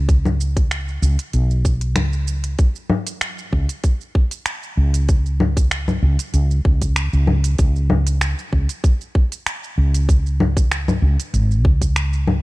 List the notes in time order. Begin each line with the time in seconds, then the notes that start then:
Already playing: C#2
0.09 kick, closed hi-hat, shaker
0.25 low conga, shaker
0.41 shaker
0.57 kick, closed hi-hat, shaker
0.71 finger snap, closed hi-hat, shaker
0.88 shaker
1.02 C#2, shaker
1.19 closed hi-hat, shaker
1.33 B1, closed hi-hat, shaker
1.51 shaker
1.65 kick, shaker
1.81 closed hi-hat, shaker
1.96 C#2, finger snap, closed hi-hat, low conga, shaker
2.13 shaker
2.28 shaker
2.44 closed hi-hat, shaker
2.59 kick, closed hi-hat, shaker
2.76 shaker
2.90 low conga
3.07 closed hi-hat, shaker
3.21 finger snap, closed hi-hat, shaker
3.38 shaker
3.53 C#2, kick
3.69 closed hi-hat, shaker
3.84 kick, closed hi-hat, shaker
4.01 shaker
4.15 kick
4.31 closed hi-hat, shaker
4.46 finger snap, closed hi-hat, shaker
4.63 shaker
4.77 C#2
4.94 closed hi-hat, shaker
5.09 kick, closed hi-hat, shaker
5.26 shaker
5.40 low conga
5.57 kick, closed hi-hat, shaker
5.71 finger snap, closed hi-hat, shaker
5.88 low conga, shaker
6.02 C#2
6.19 closed hi-hat, shaker
6.34 C#2, closed hi-hat, shaker
6.51 shaker
6.65 C#2, kick
6.82 kick, closed hi-hat, shaker
6.96 finger snap, closed hi-hat, shaker
7.13 C#2, shaker
7.27 low conga
7.44 closed hi-hat, shaker
7.58 C#2, kick, closed hi-hat, shaker
7.76 shaker
7.90 low conga
8.07 closed hi-hat, shaker
8.21 finger snap, closed hi-hat, shaker
8.39 shaker
8.53 C#2, kick
8.69 closed hi-hat, shaker
8.84 kick, closed hi-hat, shaker
9.01 shaker
9.15 kick
9.32 closed hi-hat, shaker
9.46 finger snap, closed hi-hat, shaker
9.64 shaker
9.78 C#2
9.94 closed hi-hat, shaker
10.09 kick, closed hi-hat, shaker
10.26 shaker
10.40 low conga
10.57 kick, closed hi-hat, shaker
10.72 finger snap, closed hi-hat, shaker
10.88 low conga, shaker
11.02 C#2
11.20 closed hi-hat, shaker
11.34 G#1, closed hi-hat, shaker
11.51 shaker
11.65 C#2, kick
11.82 kick, closed hi-hat, shaker
11.96 finger snap, closed hi-hat, shaker
12.13 shaker
12.27 low conga